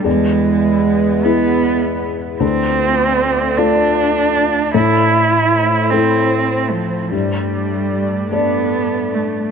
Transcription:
<<
  \new Staff \with { instrumentName = "Analog synth pad" } { \time 6/8 \key a \minor \tempo 4. = 51 << { <e' b'>2. | <f' d''>2. | <e' c''>2. | <d' d''>2. | } \\ { b2. | a2.~ | a2. | a2. | } >> }
  \new Staff \with { instrumentName = "Felt piano" } { \time 6/8 \key a \minor e,4. <gis e' b'>4. | d,4. <a f' d''>4. | a,4. <a e' c''>4. | g,4. <a a' d''>4. | }
  \new Staff \with { instrumentName = "Cello" } { \time 6/8 \key a \minor gis4. b4 r8 | c'4. d'4. | e'4. c'4 f8 | g4. b4 a8 | }
>>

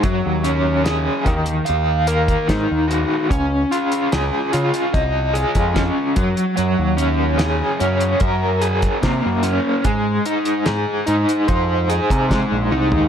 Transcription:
<<
  \new Staff \with { instrumentName = "Overdriven electric guitar" } { \time 4/4 \key ges \lydian \tempo 4 = 73 ges8 des'8 aes'8 ees8 f''8 bes'8 ees'8 ges'8 | des'8 f'8 aes'8 f'8 ees''8 aes'8 des'8 ges8 | ges8 des'8 aes'8 des'8 bes'8 aes'8 bes8 des'8 | aes8 ees'8 aes'8 ees'8 c''8 aes'8 aes8 ees'8 | }
  \new Staff \with { instrumentName = "Picked electric bass" } { \clef bass \time 4/4 \key ges \lydian ges,16 ees,4~ ees,16 ees,8 ees,4 aes,16 ees,8 r16 | des,8 r8 des,16 r16 des16 r16 c,8. f,8 r16 ges,16 r16 | ges,16 ees,4~ ees,16 ges,8 ges,4 c16 ges,8 r16 | aes,8 r8 aes,16 r16 aes,16 r16 f,8. c8 bes,,16 c,16 ees,16 | }
  \new DrumStaff \with { instrumentName = "Drums" } \drummode { \time 4/4 <hh bd>8 hh8 <hh sn>8 <hh bd>16 hh16 hh8 hh16 <hh bd>16 <hh bd sn>8 hh8 | <hh bd>8 hh16 hh16 <hh sn>8 hh16 hh16 <hh bd>8 hh16 <hh bd>16 <hh bd sn>8 <hh bd>16 hh16 | hh8 hh8 <hh sn>8 hh16 hh16 <hh bd>8 hh16 <hh bd>16 <hh bd sn>8 hh8 | <hh bd>8 hh16 hh16 <hh sn>8 hh16 hh16 <hh bd>8 hh16 <hh bd>16 <hh bd sn>8 tommh16 tomfh16 | }
>>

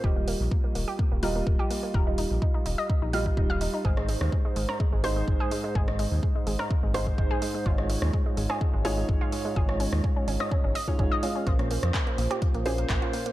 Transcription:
<<
  \new Staff \with { instrumentName = "Felt piano" } { \time 4/4 \key ees \mixolydian \tempo 4 = 126 <g f' ees''>2~ <g f' ees''>8 <g f' ees''>4. | <g f' ees''>2~ <g f' ees''>8 <g f' ees''>4. | <aes, aes ees' c''>2~ <aes, aes ees' c''>8 <aes, aes ees' c''>4. | <aes ees'>2~ <aes ees'>8 <aes, aes ees' c''>4. |
<f' des''>2~ <f' des''>8 <aes, aes f' des''>4. | <aes, aes f' des''>2~ <aes, aes f' des''>8 r16 <aes, aes f' des''>8. <aes f' f''>8 | <bes, bes des' c''>2~ <bes, bes des' c''>8 <bes, bes des' c''>4. | }
  \new Staff \with { instrumentName = "Synth arpeggio sound" } { \time 4/4 \key ees \mixolydian g'16 bes16 bes16 r16 bes16 bes16 bes16 g'16 bes16 bes16 bes'16 bes16 bes16 g'16 bes16 bes16 | bes'16 ees'16 ees'16 r16 ees'16 ees'16 ees'16 ees''16 ees'16 ees'16 f''16 ees'16 ees'16 f''16 ees'16 ees'16 | aes'16 aes16 aes16 r16 aes16 aes16 aes16 bes'16 aes16 aes16 c''16 aes16 aes16 aes'16 aes16 aes16 | aes'16 aes16 aes16 r16 aes16 aes16 aes16 bes'16 aes16 aes16 c''16 aes16 aes16 aes'16 aes16 aes16 |
f'16 aes16 aes16 r16 aes16 aes16 aes16 aes'16 aes16 aes16 aes'16 aes16 aes16 f'16 aes16 aes16 | aes'16 des'16 des'16 r16 des'16 des'16 des'16 ees''16 des'16 des'16 ees''16 des'16 des'16 ees''16 des'16 des'16 | f'16 bes16 bes16 r16 bes16 bes16 bes16 g'16 bes16 bes16 aes'16 bes16 bes16 f'16 bes16 bes16 | }
  \new Staff \with { instrumentName = "Analog synth bass" } { \clef bass \time 4/4 \key ees \mixolydian ees,,8. bes,,16 r8 ees,,16 r8 ees,,8. ees,,16 r8. | ees,,8. bes,,16 r8 ees,,16 r8 bes,,8. ees,,8. r16 | aes,,8. ees,16 r8 aes,,16 r8 aes,,8. aes,,16 r8. | aes,,8. ees,16 r8 aes,,16 r8 aes,,8. aes,,16 r8. |
aes,,8. ees,16 r8 aes,,16 r8 aes,,8. aes,,16 r8. | aes,,8. ees,16 r8 aes,,16 r8 aes,,16 r8 aes,,16 r8. | bes,,8. f,16 r8 bes,,16 r8 bes,,8. bes,,16 r8. | }
  \new DrumStaff \with { instrumentName = "Drums" } \drummode { \time 4/4 bd8 hho8 bd8 hho8 bd8 hho8 bd8 hho8 | bd8 hho8 bd8 hho8 bd8 hho16 bd16 bd8 hho8 | bd16 ss16 hho16 ss16 bd8 hho16 ss16 bd8 hho8 bd8 hho8 | bd16 ss16 hho8 bd8 hho16 ss16 bd8 hho16 bd16 bd8 hho8 |
bd16 ss16 hho16 ss16 bd8 hho16 ss16 bd8 hho8 bd8 hho8 | bd16 ss16 hho16 ss16 bd8 hho16 ss16 bd8 hho16 bd16 bd8 hho8 | <hh bd>16 <hh ss>16 hho16 <hh ss>16 <hc hh bd>16 hh16 hho16 <hh ss>16 <hh bd>16 hh16 hho16 hh16 <hc hh bd>16 hh16 hho16 hh16 | }
>>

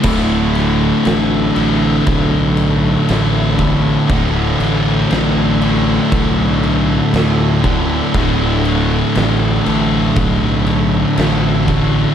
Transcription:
<<
  \new Staff \with { instrumentName = "Tonewheel organ" } { \clef bass \time 4/4 \key c \major \tempo 4 = 59 <d e a>1~ | <d e a>1~ | <d e a>1 | }
  \new Staff \with { instrumentName = "Distorted electric guitar" } { \clef bass \time 4/4 \key c \major <d, a, d>2.~ <d, a, d>8 <d, a, d>8 | <d, a, d>2.~ <d, a, d>8 <d, a, d>8 | <d, a, d>2.~ <d, a, d>8 <d, a, d>8 | }
  \new Staff \with { instrumentName = "Distorted electric guitar" } { \clef bass \time 4/4 \key c \major <d, a, d>1 | <d, a, d>1 | <d, a, d>1 | }
  \new Staff \with { instrumentName = "Distorted electric guitar" } { \clef bass \time 4/4 \key c \major <d, a, d>4. <d, a, d>4. <d, a, d>4 | <d, a, d>4. <d, a, d>4. <d, a, d>4 | <d, a, d>4. <d, a, d>4. <d, a, d>4 | }
  \new Staff \with { instrumentName = "Fingered electric bass" } { \clef bass \time 4/4 \key c \major d,,4 a,,8 a,,8 b,,4 a,,4 | d,,8 a,,8 a,,4 b,,4 d,4 | d,,4 a,,8 a,,8 b,,4 a,,4 | }
  \new DrumStaff \with { instrumentName = "Drums" } \drummode { \time 4/4 <cymc bd>8 <cymc sn>8 <cymc sn>8 cymc8 <cymc bd>8 cymc8 <cymc sn>8 <cymc bd>8 | <cymc bd>8 <cymc sn>8 <cymc sn>8 cymc8 <cymc bd>8 cymc8 <cymc sn>8 <cymc bd>8 | <cymc bd>8 cymc8 <cymc sn>8 cymc8 <cymc bd>8 cymc8 <cymc sn>8 <cymc bd>8 | }
>>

